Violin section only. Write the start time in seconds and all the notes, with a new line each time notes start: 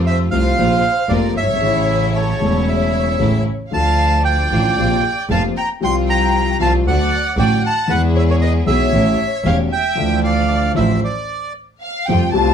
0.07 C5
0.34 C5
1.11 A#4
1.37 C#5
2.17 A4
2.68 C#5
3.73 F5
4.25 D5
5.31 F5
5.57 G5
5.83 G5
6.09 G5
6.60 F5
6.87 D5
7.37 D5
7.63 F#5
7.89 B4
8.15 C#5
8.28 A#4
8.42 B4
8.66 C#5
9.46 C#5
9.71 E5
10.25 D5
10.76 C5
11.81 F5
12.06 G5
12.33 A5